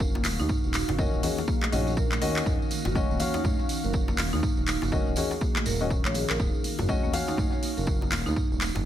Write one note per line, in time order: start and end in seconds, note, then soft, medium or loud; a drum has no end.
0.00 0.26 F#1 medium
0.00 8.85 D#3 medium
0.00 8.85 A#3 medium
0.00 0.96 C#4 medium
0.00 0.96 F#4 medium
0.00 8.85 F#4 medium
0.00 0.96 F5 loud
0.00 8.85 F5 medium
0.00 kick loud
0.00 tambourine medium
0.15 0.20 A#3 medium
0.15 tambourine soft
0.15 djembe slap medium
0.24 0.37 D#1 medium
0.24 clap loud
0.24 open hi-hat medium
0.24 tambourine loud
0.24 muted conga medium
0.24 djembe tone medium
0.39 0.48 D#2 loud
0.39 0.48 D#4 loud
0.39 tambourine soft
0.39 high conga medium
0.49 kick loud
0.49 mid tom medium
0.49 tambourine medium
0.49 muted conga medium
0.64 0.83 D#1 medium
0.64 tambourine soft
0.74 0.87 D#4 medium
0.74 clap medium
0.74 open hi-hat loud
0.74 tambourine medium
0.74 muted conga soft
0.88 1.08 F#1 medium
0.88 mid tom medium
0.88 tambourine soft
0.88 djembe slap medium
0.88 djembe tone medium
0.98 1.21 C#4 medium
0.98 1.21 F#4 medium
0.98 1.07 A#4 loud
0.98 1.21 D#5 loud
0.98 kick loud
0.98 tambourine medium
0.98 muted conga medium
0.98 djembe tone medium
0.98 high conga medium
0.98 low conga medium
1.13 1.21 D#1 medium
1.13 tambourine soft
1.23 1.35 C#4 medium
1.23 1.35 F#4 medium
1.23 1.36 G#4 medium
1.23 1.35 D#5 medium
1.23 open hi-hat loud
1.23 tambourine loud
1.23 djembe tone medium
1.23 low conga loud
1.38 tambourine soft
1.38 muted conga soft
1.38 djembe slap medium
1.48 1.62 A#3 medium
1.48 kick loud
1.48 tambourine medium
1.62 clap medium
1.62 tambourine soft
1.62 muted conga medium
1.62 high conga medium
1.72 2.19 A#1 loud
1.72 1.90 C#4 medium
1.72 1.86 D#4 medium
1.72 1.90 F#4 medium
1.72 1.90 D#5 loud
1.72 mid tom medium
1.72 open hi-hat medium
1.72 tambourine medium
1.87 tambourine soft
1.87 muted conga soft
1.97 2.05 A#4 loud
1.97 kick loud
1.97 tambourine medium
2.12 clap medium
2.12 tambourine soft
2.12 high conga medium
2.21 2.43 D#2 medium
2.21 2.93 C#4 medium
2.21 2.93 F#4 medium
2.21 2.29 A#4 loud
2.21 2.93 D#5 loud
2.21 open hi-hat loud
2.21 tambourine medium
2.21 muted conga medium
2.36 clap medium
2.36 tambourine soft
2.46 2.58 D#1 loud
2.46 2.59 D#4 medium
2.46 kick loud
2.46 mid tom medium
2.46 tambourine medium
2.46 muted conga medium
2.62 tambourine soft
2.71 open hi-hat medium
2.71 tambourine loud
2.71 muted conga soft
2.85 3.05 F#1 medium
2.85 2.95 F#4 medium
2.85 mid tom medium
2.85 tambourine soft
2.85 djembe slap medium
2.85 djembe tone medium
2.95 3.18 C#4 loud
2.95 3.18 F#4 medium
2.95 3.18 D#5 loud
2.95 kick loud
2.95 tambourine medium
2.95 muted conga soft
2.95 high conga medium
2.95 djembe tone medium
2.95 low conga medium
3.10 3.18 D#1 medium
3.10 3.15 A#3 medium
3.10 tambourine soft
3.19 4.90 C#4 medium
3.19 4.90 F#4 medium
3.19 4.90 F5 loud
3.19 open hi-hat medium
3.19 tambourine loud
3.19 djembe tone medium
3.19 low conga loud
3.34 3.44 D#4 loud
3.34 tambourine soft
3.34 djembe slap medium
3.34 muted conga soft
3.44 kick loud
3.44 mid tom medium
3.44 tambourine medium
3.44 djembe tone loud
3.44 high conga loud
3.59 3.68 C#4 medium
3.59 tambourine soft
3.59 muted conga medium
3.69 open hi-hat medium
3.69 tambourine loud
3.84 4.20 F#1 medium
3.84 3.93 A#4 medium
3.84 tambourine soft
3.84 muted conga soft
3.93 kick loud
3.93 tambourine medium
4.08 4.14 A#3 medium
4.08 tambourine soft
4.08 djembe slap medium
4.18 4.30 D#1 medium
4.18 clap loud
4.18 open hi-hat loud
4.18 tambourine medium
4.18 muted conga medium
4.18 djembe tone medium
4.33 4.41 D#2 loud
4.33 4.42 D#4 loud
4.33 tambourine soft
4.33 high conga medium
4.43 kick loud
4.43 mid tom medium
4.43 tambourine medium
4.43 muted conga medium
4.57 4.77 D#1 medium
4.57 tambourine soft
4.67 4.81 D#4 medium
4.67 clap medium
4.67 open hi-hat medium
4.67 tambourine medium
4.67 muted conga soft
4.82 5.02 F#1 medium
4.82 mid tom medium
4.82 tambourine soft
4.82 djembe slap medium
4.82 djembe tone medium
4.92 5.14 C#4 medium
4.92 5.14 F#4 medium
4.92 5.00 A#4 loud
4.92 5.14 D#5 loud
4.92 kick loud
4.92 tambourine medium
4.92 muted conga soft
4.92 djembe tone medium
4.92 high conga medium
4.92 low conga medium
5.07 5.15 D#1 medium
5.07 tambourine soft
5.16 5.29 C#4 medium
5.16 5.29 F#4 medium
5.16 5.30 G#4 medium
5.16 5.29 D#5 medium
5.16 open hi-hat medium
5.16 tambourine loud
5.16 djembe tone medium
5.16 low conga medium
5.31 tambourine soft
5.31 djembe slap medium
5.31 muted conga soft
5.41 5.55 A#3 medium
5.41 kick loud
5.41 tambourine medium
5.55 clap medium
5.55 tambourine soft
5.55 muted conga soft
5.55 high conga medium
5.66 6.07 D#1 medium
5.66 5.80 A#4 loud
5.66 mid tom medium
5.66 open hi-hat medium
5.66 tambourine loud
5.80 5.89 C#4 medium
5.80 5.89 F#4 medium
5.80 5.89 D#5 medium
5.80 tambourine soft
5.80 muted conga soft
5.90 6.04 C#4 medium
5.90 kick loud
5.90 tambourine medium
6.05 6.24 A#1 loud
6.05 6.15 C#5 loud
6.05 clap medium
6.05 tambourine soft
6.05 high conga medium
6.14 6.29 G#4 medium
6.14 open hi-hat medium
6.14 tambourine medium
6.14 muted conga medium
6.29 6.38 A#1 medium
6.29 6.39 A#4 loud
6.29 clap medium
6.29 tambourine soft
6.39 6.52 D#1 loud
6.39 6.53 D#4 medium
6.39 kick loud
6.39 mid tom medium
6.39 tambourine medium
6.39 muted conga medium
6.54 tambourine soft
6.64 open hi-hat medium
6.64 tambourine medium
6.64 muted conga soft
6.78 6.98 F#1 medium
6.78 6.88 F#4 medium
6.78 mid tom medium
6.78 tambourine soft
6.78 djembe slap medium
6.78 djembe tone medium
6.88 7.11 C#4 loud
6.88 7.11 F#4 medium
6.88 7.11 D#5 loud
6.88 kick loud
6.88 tambourine medium
6.88 muted conga soft
6.88 djembe tone medium
6.88 high conga medium
6.88 low conga medium
7.03 7.12 D#1 medium
7.03 7.09 A#3 medium
7.03 tambourine soft
7.12 8.61 C#4 medium
7.12 8.61 F#4 medium
7.12 8.61 F5 loud
7.12 open hi-hat medium
7.12 tambourine medium
7.12 djembe tone medium
7.12 low conga medium
7.28 7.37 D#4 loud
7.28 tambourine soft
7.28 muted conga soft
7.28 djembe slap medium
7.37 kick loud
7.37 mid tom medium
7.37 tambourine medium
7.37 high conga loud
7.37 djembe tone medium
7.52 7.61 C#5 medium
7.52 tambourine soft
7.52 muted conga soft
7.63 open hi-hat medium
7.63 tambourine medium
7.77 8.13 F#1 medium
7.77 7.87 A#4 medium
7.77 tambourine soft
7.77 muted conga soft
7.87 kick loud
7.87 tambourine medium
8.01 8.07 A#3 medium
8.01 tambourine soft
8.01 djembe slap medium
8.12 8.24 D#1 medium
8.12 clap loud
8.12 open hi-hat medium
8.12 tambourine medium
8.12 muted conga medium
8.12 djembe tone medium
8.26 8.35 D#2 loud
8.26 8.35 D#4 loud
8.26 tambourine soft
8.26 high conga medium
8.36 kick loud
8.36 mid tom medium
8.36 tambourine medium
8.36 muted conga medium
8.51 8.70 D#1 medium
8.51 tambourine soft
8.60 clap medium
8.60 open hi-hat medium
8.60 tambourine medium
8.60 muted conga soft
8.75 8.85 F#1 medium
8.75 mid tom medium
8.75 tambourine soft
8.75 djembe slap medium
8.75 djembe tone medium